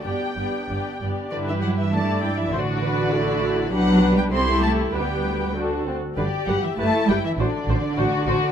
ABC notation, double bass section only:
X:1
M:2/4
L:1/8
Q:1/4=99
K:G
V:1 name="Double bass section" clef=bass
G,,, G,,, G,,, G,,, | G,,4 | A,,,4 | B,,,2 C,,2 |
D,,3 z | G,,, G,,, G,,, G,,, | A,,, A,,, A,,, A,,, |]